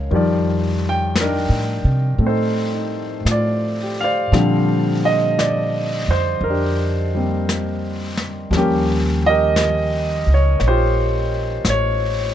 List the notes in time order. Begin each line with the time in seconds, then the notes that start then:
Already playing: F3 G#3 A#3 C#4 D#4 A#4 C#5 F5
0.11 F2 D#3 F3 G3, brush sweep
0.15 D5
0.89 G5
1.16 brush sweep, snare, hi-hat pedal
1.21 D4 D#4 A#4
1.49 A2
1.84 C3
2.18 A2 A3 C4, brush sweep
2.26 D#4 A4 C5
2.74 D#4
3.25 A2 F4, brush sweep, snare, hi-hat pedal
3.31 D5
3.83 G4
4.01 C5 D5 F5
4.32 A#2 D3 F3 G3 C4, brush sweep, snare
5.05 D#5
5.39 D5, brush sweep, snare, hi-hat pedal
6.08 F2 C5
6.41 F2 A#4, brush sweep
6.49 D4 G4
7.14 G3 A#3 C4
7.49 brush sweep, snare, hi-hat pedal
8.17 snare
8.51 D#2 F3 G3 A#3, brush sweep, snare
8.55 A#3 C#4 G4
9.26 G4 A#4 D#5
9.56 brush sweep, snare, hi-hat pedal
10.26 C#2
10.34 C#5
10.60 A#1, brush sweep, snare
10.68 F4 G4 C5
11.64 A1, brush sweep, snare, hi-hat pedal
11.70 C#5